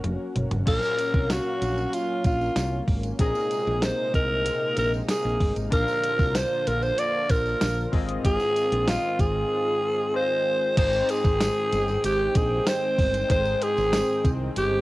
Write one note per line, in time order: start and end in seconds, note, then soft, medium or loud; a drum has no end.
0.00 0.63 F#3 medium
0.00 0.63 A#3 medium
0.00 0.62 C#4 medium
0.00 0.63 C#4 medium
0.00 0.63 F#4 medium
0.00 0.64 F#4 medium
0.00 0.63 A#4 medium
0.00 0.64 F#5 medium
0.00 high tom medium
0.04 0.16 F1 medium
0.04 closed hi-hat medium
0.36 0.47 F#1 medium
0.36 closed hi-hat medium
0.36 mid tom medium
0.51 0.63 F#1 medium
0.51 closed hi-hat soft
0.51 floor tom medium
0.66 0.79 A#1 medium
0.66 1.58 A#2 medium
0.66 3.15 F#3 medium
0.66 3.17 F#3 medium
0.66 7.89 A#3 medium
0.66 3.15 C#4 medium
0.66 3.17 C#4 medium
0.66 3.16 A#4 medium
0.66 1.33 A#4 loud
0.66 3.17 F5 medium
0.66 3.16 F5 medium
0.66 kick loud
0.66 closed hi-hat loud
0.66 crash medium
0.66 tambourine soft
0.83 tambourine soft
0.99 closed hi-hat medium
0.99 tambourine soft
1.14 1.38 C2 medium
1.14 kick loud
1.30 1.95 F#4 medium
1.30 snare loud
1.30 closed hi-hat medium
1.30 tambourine medium
1.62 1.85 A#1 medium
1.62 closed hi-hat medium
1.62 tambourine soft
1.77 tambourine soft
1.93 2.25 F4 medium
1.93 closed hi-hat medium
1.93 tambourine soft
2.24 2.48 A#1 medium
2.24 2.85 F4 medium
2.24 kick medium
2.24 closed hi-hat medium
2.24 tambourine soft
2.41 tambourine soft
2.56 2.80 C2 medium
2.56 snare loud
2.56 closed hi-hat medium
2.56 tambourine medium
2.88 3.12 G#1 medium
2.88 kick medium
2.88 open hi-hat medium
3.03 closed hi-hat soft
3.03 tambourine soft
3.19 3.31 A#1 loud
3.19 4.10 A#2 medium
3.19 5.70 C3 medium
3.19 5.70 G#3 medium
3.19 5.68 C4 medium
3.19 5.70 D#4 medium
3.19 5.68 G#4 medium
3.19 3.85 G#4 medium
3.19 5.68 A#4 medium
3.19 5.69 D#5 medium
3.19 kick loud
3.19 closed hi-hat loud
3.19 tambourine soft
3.35 tambourine soft
3.51 closed hi-hat medium
3.51 tambourine soft
3.67 3.91 A#1 medium
3.82 4.15 C5 medium
3.82 snare loud
3.82 closed hi-hat medium
3.82 tambourine medium
4.14 4.50 C2 medium
4.14 4.74 A#4 medium
4.14 kick medium
4.14 closed hi-hat medium
4.14 tambourine soft
4.46 closed hi-hat loud
4.46 tambourine soft
4.77 5.01 A#1 medium
4.77 4.93 A#4 medium
4.77 closed hi-hat medium
4.77 tambourine soft
4.94 tambourine soft
5.09 5.54 G#4 medium
5.09 snare loud
5.09 closed hi-hat medium
5.09 tambourine medium
5.25 5.37 A#1 medium
5.40 5.52 G1 medium
5.40 kick medium
5.40 open hi-hat medium
5.56 5.68 G#1 medium
5.56 closed hi-hat soft
5.56 tambourine soft
5.70 5.84 A#1 loud
5.70 6.63 A#2 medium
5.70 7.91 D3 medium
5.70 7.91 F3 medium
5.70 7.88 D4 medium
5.70 7.89 F4 medium
5.70 7.91 F4 medium
5.70 7.89 A#4 medium
5.70 6.37 A#4 loud
5.70 7.90 F5 medium
5.70 kick loud
5.70 closed hi-hat loud
5.70 tambourine soft
5.88 tambourine soft
6.03 closed hi-hat medium
6.03 tambourine soft
6.19 6.43 C2 medium
6.19 kick medium
6.19 tambourine soft
6.35 6.69 C5 loud
6.35 snare loud
6.35 closed hi-hat medium
6.35 tambourine medium
6.67 6.91 A#1 medium
6.67 6.84 A#4 medium
6.67 closed hi-hat medium
6.67 tambourine soft
6.82 7.00 C5 loud
6.82 tambourine soft
6.98 7.32 D5 loud
6.98 closed hi-hat loud
6.98 tambourine medium
7.29 7.54 A#1 medium
7.29 7.93 A#4 medium
7.29 kick medium
7.29 closed hi-hat medium
7.29 tambourine soft
7.46 tambourine soft
7.61 7.85 A#1 medium
7.61 snare loud
7.61 closed hi-hat medium
7.61 tambourine medium
7.92 8.17 G#1 medium
7.92 8.84 G#2 medium
7.92 10.74 D#3 medium
7.92 10.74 G#3 medium
7.92 10.10 C4 medium
7.92 10.74 C4 medium
7.92 10.74 F4 medium
7.92 10.10 F4 medium
7.92 10.10 G#4 medium
7.92 10.11 D#5 medium
7.92 kick medium
7.92 open hi-hat medium
8.09 closed hi-hat soft
8.24 8.37 G#1 medium
8.24 8.90 G#4 loud
8.24 kick loud
8.24 closed hi-hat loud
8.24 tambourine soft
8.40 tambourine soft
8.56 closed hi-hat medium
8.56 tambourine soft
8.72 8.96 A#1 medium
8.72 closed hi-hat medium
8.88 9.22 F4 medium
8.88 snare loud
8.88 closed hi-hat loud
8.88 tambourine medium
9.19 9.43 G#1 medium
9.19 10.15 G#4 loud
9.19 kick medium
9.19 closed hi-hat medium
9.19 tambourine soft
10.14 10.77 C4 medium
10.14 10.77 F4 soft
10.14 10.78 G#4 medium
10.14 10.74 C5 loud
10.14 10.78 D#5 medium
10.77 11.01 G#1 loud
10.77 11.68 G#2 medium
10.77 14.81 D#3 medium
10.77 13.26 G#3 medium
10.77 14.81 G#3 medium
10.77 14.81 C4 medium
10.77 13.26 D#4 medium
10.77 11.12 C5 loud
10.77 13.27 C5 medium
10.77 14.81 G5 medium
10.77 13.26 G5 medium
10.77 kick loud
10.77 closed hi-hat loud
10.77 crash medium
10.77 tambourine soft
10.93 tambourine soft
11.09 12.04 G#4 loud
11.09 closed hi-hat medium
11.09 tambourine soft
11.25 11.48 G#1 loud
11.25 kick loud
11.25 tambourine soft
11.41 snare loud
11.41 closed hi-hat medium
11.41 tambourine medium
11.72 11.96 G1 loud
11.72 closed hi-hat medium
11.72 tambourine soft
11.88 tambourine soft
12.04 12.28 G#1 medium
12.04 12.38 G4 medium
12.04 closed hi-hat loud
12.04 tambourine medium
12.35 12.59 A#1 medium
12.35 12.69 G#4 medium
12.35 kick loud
12.35 closed hi-hat medium
12.35 tambourine soft
12.67 13.31 C5 loud
12.67 snare loud
12.67 closed hi-hat medium
12.67 tambourine medium
12.99 13.22 G1 medium
12.99 kick medium
12.99 open hi-hat medium
13.14 closed hi-hat soft
13.14 tambourine soft
13.29 13.54 G#1 loud
13.29 14.21 G#2 medium
13.29 14.81 G#3 medium
13.29 14.81 D#4 medium
13.29 13.64 C5 loud
13.29 14.81 C5 medium
13.29 14.81 G5 medium
13.29 kick loud
13.29 closed hi-hat loud
13.29 tambourine soft
13.45 tambourine soft
13.62 14.30 G#4 loud
13.62 closed hi-hat medium
13.62 tambourine soft
13.77 14.01 G#1 loud
13.77 tambourine soft
13.93 snare loud
13.93 closed hi-hat loud
13.93 tambourine medium
14.25 14.49 C2 medium
14.25 kick medium
14.25 closed hi-hat medium
14.25 tambourine soft
14.56 14.80 G1 medium
14.56 14.81 G4 medium
14.56 closed hi-hat loud
14.56 tambourine medium